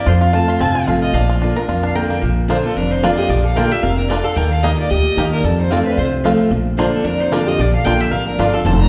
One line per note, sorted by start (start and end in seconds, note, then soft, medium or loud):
0.06 0.42 F2 loud
0.06 0.58 F2 medium
0.06 0.21 F4 medium
0.06 0.21 C5 medium
0.21 0.33 F4 medium
0.21 0.36 F5 medium
0.33 0.59 F3 medium
0.33 0.60 A3 medium
0.33 0.60 C4 medium
0.33 0.48 F4 medium
0.33 0.60 F4 medium
0.33 0.51 A5 loud
0.48 0.75 F4 medium
0.48 0.60 C6 loud
0.60 0.83 G1 medium
0.60 1.12 C3 medium
0.60 0.99 C4 medium
0.60 0.86 A5 medium
0.75 0.87 F4 medium
0.87 1.10 A1 medium
0.87 1.13 F3 medium
0.87 1.13 A3 medium
0.87 1.14 C4 medium
0.87 1.02 F4 medium
0.87 1.14 F4 medium
1.02 1.29 F4 medium
1.02 1.16 D#5 medium
1.13 1.50 A#1 loud
1.13 1.66 A#2 medium
1.13 1.40 D4 medium
1.13 1.42 F5 medium
1.29 1.66 F4 medium
1.42 1.56 D3 medium
1.42 1.56 A#3 medium
1.42 1.80 D4 medium
1.42 1.56 D4 medium
1.42 1.55 F4 medium
1.56 1.69 D4 soft
1.56 1.68 F4 soft
1.56 1.93 A#4 medium
1.68 2.04 F2 medium
1.68 2.20 F2 medium
1.68 2.07 F4 medium
1.83 2.20 D4 medium
1.83 1.97 F5 medium
1.95 2.21 D3 medium
1.95 2.21 A#3 medium
1.95 2.21 D4 medium
1.95 2.22 F4 medium
1.95 2.22 A#4 medium
1.95 2.16 G5 medium
2.10 2.22 A#3 soft
2.22 2.58 A#1 loud
2.22 2.73 A#2 medium
2.48 2.63 D3 medium
2.48 2.64 A#3 medium
2.48 2.56 A#3 medium
2.48 2.64 D4 loud
2.48 2.56 D4 medium
2.48 2.63 F4 medium
2.48 2.56 F4 medium
2.48 2.62 F4 loud
2.48 2.63 C5 medium
2.64 2.77 C4 medium
2.64 2.76 D4 soft
2.64 2.75 F4 medium
2.64 2.77 A4 medium
2.76 3.12 F1 medium
2.76 3.28 F2 medium
2.76 2.91 D4 medium
2.76 2.92 A#4 medium
2.91 3.03 D#4 medium
2.91 3.05 C5 medium
3.03 3.28 D3 loud
3.03 3.10 A#3 medium
3.03 3.29 A#3 medium
3.03 3.10 D4 medium
3.03 3.29 D4 loud
3.03 3.18 F4 medium
3.03 3.10 F4 medium
3.03 3.30 F4 loud
3.03 3.19 D5 medium
3.17 3.30 G4 medium
3.17 3.31 D#5 loud
3.29 3.65 A#1 loud
3.29 3.81 A#2 medium
3.29 3.44 F4 medium
3.29 3.44 D5 medium
3.44 3.56 A4 medium
3.44 3.58 F5 medium
3.56 3.71 D3 medium
3.56 3.63 A#3 medium
3.56 3.71 A#3 medium
3.56 3.63 D4 medium
3.56 3.71 D4 loud
3.56 3.64 F4 medium
3.56 3.70 F4 loud
3.56 3.71 A#4 loud
3.56 3.73 G5 loud
3.71 3.84 D4 soft
3.71 3.83 F4 medium
3.71 3.83 G4 medium
3.71 3.84 E5 medium
3.83 4.19 F1 medium
3.83 4.09 C3 medium
3.83 3.98 A#4 medium
3.83 3.97 F5 loud
3.98 4.10 D4 medium
3.98 4.11 A#4 medium
4.09 4.36 D3 loud
4.09 4.17 A#3 medium
4.09 4.17 D4 medium
4.09 4.24 F4 medium
4.09 4.17 F4 medium
4.09 4.25 D5 medium
4.24 4.37 A4 medium
4.24 4.38 F5 medium
4.36 4.72 D#2 loud
4.36 4.62 D#3 loud
4.36 4.51 A#4 medium
4.36 4.50 G5 medium
4.50 4.63 A4 medium
4.50 4.65 F5 medium
4.63 4.89 D#3 medium
4.63 4.89 A#3 loud
4.63 4.70 A#3 medium
4.63 4.71 D#4 medium
4.63 4.90 D#4 loud
4.63 4.77 G4 medium
4.63 4.71 G4 medium
4.63 4.90 G4 loud
4.63 4.78 D#5 medium
4.77 4.90 F4 medium
4.77 4.91 D5 medium
4.90 5.13 D2 medium
4.90 5.42 A#2 medium
4.90 5.32 G4 medium
4.90 5.32 D#5 loud
5.17 5.40 D#2 medium
5.17 5.43 D#3 medium
5.17 5.43 A#3 medium
5.17 5.24 A#3 medium
5.17 5.43 D#4 medium
5.17 5.24 D#4 medium
5.17 5.44 G4 loud
5.17 5.25 G4 medium
5.33 5.44 D4 medium
5.33 5.46 A#4 medium
5.44 5.80 F2 loud
5.44 5.95 F2 medium
5.44 5.59 C4 medium
5.44 5.59 A4 medium
5.59 5.70 D#4 medium
5.59 5.73 C5 medium
5.70 5.97 F3 medium
5.70 5.97 A3 medium
5.70 5.78 C4 medium
5.70 5.97 C4 loud
5.70 5.85 F4 medium
5.70 5.78 F4 medium
5.70 5.97 F4 medium
5.70 5.85 D5 medium
5.85 5.96 D4 medium
5.85 5.97 B4 medium
5.97 6.33 C2 medium
5.97 6.49 C3 medium
5.97 6.11 F4 medium
5.97 6.07 C5 medium
6.24 6.50 F3 medium
6.24 6.50 A3 loud
6.24 6.31 C4 medium
6.24 6.51 C4 medium
6.24 6.32 F4 medium
6.24 6.51 F4 loud
6.51 6.87 A#1 loud
6.51 7.03 A#2 medium
6.77 7.03 D3 medium
6.77 7.04 A#3 medium
6.77 6.85 A#3 medium
6.77 7.04 D4 loud
6.77 6.85 D4 medium
6.77 6.92 F4 medium
6.77 7.04 F4 loud
6.77 6.85 F4 medium
6.77 6.91 C5 medium
6.93 7.04 C4 medium
6.93 7.07 A4 medium
7.04 7.56 F2 medium
7.04 7.40 F2 medium
7.04 7.19 D4 medium
7.04 7.22 A#4 medium
7.19 7.33 D#4 medium
7.19 7.35 C5 medium
7.31 7.57 D3 medium
7.31 7.38 A#3 medium
7.31 7.58 A#3 loud
7.31 7.38 D4 medium
7.31 7.58 D4 loud
7.31 7.39 F4 medium
7.31 7.46 F4 medium
7.31 7.58 F4 loud
7.31 7.49 D5 medium
7.46 7.59 G4 medium
7.46 7.62 D#5 loud
7.59 7.77 A#1 loud
7.59 8.10 A#2 loud
7.59 7.73 F4 medium
7.59 7.74 D5 medium
7.73 7.85 A4 medium
7.73 7.86 F5 loud
7.84 8.08 A#1 medium
7.84 8.11 D3 medium
7.84 8.11 A#3 loud
7.84 7.92 A#3 medium
7.84 8.11 D4 loud
7.84 7.92 D4 medium
7.84 8.12 F4 loud
7.84 7.92 F4 medium
7.84 8.00 A#4 medium
7.84 8.02 G5 loud
8.00 8.11 G4 medium
8.00 8.13 E5 medium
8.11 8.34 A1 medium
8.11 8.63 F2 medium
8.11 8.26 A#4 medium
8.11 8.27 F5 loud
8.27 8.39 D4 medium
8.27 8.41 A#4 medium
8.38 8.62 G1 medium
8.38 8.53 D3 medium
8.38 8.53 A#3 loud
8.38 8.46 A#3 medium
8.38 8.53 D4 medium
8.38 8.46 D4 medium
8.38 8.53 F4 medium
8.38 8.46 F4 medium
8.38 8.52 F4 loud
8.38 8.55 D5 medium
8.53 8.66 D4 soft
8.53 8.65 F4 medium
8.53 8.66 A4 medium
8.53 8.67 F5 medium
8.65 8.89 F1 loud
8.65 8.89 F2 loud
8.65 8.80 C5 medium
8.65 8.79 A5 medium
8.80 8.89 D5 medium
8.80 8.89 A#5 loud